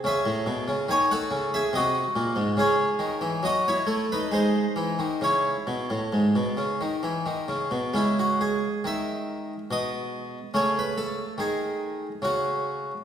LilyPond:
<<
  \new Staff \with { instrumentName = "Harpsichord" } { \time 3/4 \key cis \minor \tempo 4 = 70 <gis' e''>4 <cis'' gis''>16 <a' fis''>8 <gis' e''>16 <ges' ees''>4 | <cis' gis'>4 <fis' dis''>16 <e' cis''>8 <dis' b'>16 <dis' bis'>4 | <e' cis''>2~ <e' cis''>8 r8 | e'16 fis'16 gis'8 e''4 dis''4 |
cis''16 b'16 a'8 gis'4 fis'4 | }
  \new Staff \with { instrumentName = "Harpsichord" } { \clef bass \time 3/4 \key cis \minor << { r2. | r2. | r2. | gis2. |
a2. | } \\ { cis16 a,16 b,16 cis16 dis8 cis8 c8 ais,16 gis,16 | cis8 dis16 e16 fis8 a8 gis8 e16 dis16 | cis8 b,16 a,16 gis,16 b,16 cis16 dis16 e16 dis16 cis16 b,16 | cis4 dis4 b,4 |
cis4 dis4 cis4 | } >> }
>>